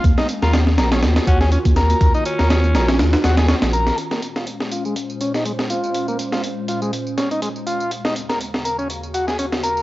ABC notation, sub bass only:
X:1
M:4/4
L:1/16
Q:"Swing 16ths" 1/4=122
K:Bbm
V:1 name="Sub bass" clef=bass
E,, z2 E,,3 B,,,2 E,, z E,,2 z E,,2 z | E,, z2 E,,3 B,,,2 E,, z E,,2 z B,,,2 z | z16 | z16 |
z16 |]